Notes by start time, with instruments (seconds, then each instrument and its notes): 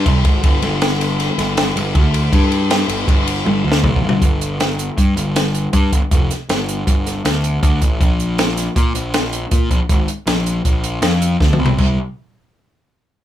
0.06 picked electric bass C2, kick, ride
0.24 picked electric bass G#1, kick, ride
0.43 picked electric bass G1, kick, ride
0.62 picked electric bass G1, ride
0.81 snare, ride
1.01 snare, ride
1.20 snare, ride
1.38 picked electric bass G1, snare, ride
1.57 snare, ride
1.76 picked electric bass G1, ride
1.95 picked electric bass D2, kick, ride
2.14 ride
2.32 picked electric bass G2, kick, ride
2.52 ride
2.70 snare, ride
2.88 picked electric bass G1, ride
3.08 picked electric bass G1, kick, ride
3.27 ride
3.45 picked electric bass G1, high tom
3.64 picked electric bass D2
3.72 snare
3.83 picked electric bass B1, kick, mid tom
3.96 kick
4.02 picked electric bass G1
4.09 floor tom
4.22 picked electric bass G1, kick, closed hi-hat
4.41 closed hi-hat
4.60 snare, closed hi-hat
4.79 closed hi-hat
4.97 picked electric bass G2, kick, closed hi-hat
5.16 picked electric bass G1, closed hi-hat
5.36 snare, closed hi-hat
5.55 closed hi-hat
5.73 picked electric bass G2, kick, closed hi-hat
5.92 picked electric bass G1, kick, closed hi-hat
6.11 picked electric bass F1, kick, closed hi-hat
6.31 snare, closed hi-hat
6.49 picked electric bass G1, snare, closed hi-hat
6.69 closed hi-hat
6.87 picked electric bass G1, kick, closed hi-hat
7.07 snare, closed hi-hat
7.25 picked electric bass D2, snare, closed hi-hat
7.44 closed hi-hat
7.63 picked electric bass D2, kick, closed hi-hat
7.81 picked electric bass A1, kick, closed hi-hat
8.00 picked electric bass A#1, kick, closed hi-hat
8.20 closed hi-hat
8.38 snare, closed hi-hat
8.57 snare, closed hi-hat
8.76 picked electric bass A#2, kick, closed hi-hat
8.94 picked electric bass A#1, closed hi-hat
9.14 snare, closed hi-hat
9.33 closed hi-hat
9.51 picked electric bass A#2, kick, closed hi-hat
9.71 picked electric bass A#1, kick, closed hi-hat
9.89 picked electric bass G#1, kick, closed hi-hat
10.08 closed hi-hat
10.26 picked electric bass A#1, snare, closed hi-hat
10.46 closed hi-hat
10.65 picked electric bass A#1, kick, closed hi-hat
10.84 closed hi-hat
11.02 picked electric bass F2, snare, closed hi-hat
11.22 closed hi-hat
11.40 picked electric bass D2, kick, snare
11.53 mid tom
11.59 picked electric bass C2
11.66 floor tom
11.78 picked electric bass C2, kick, crash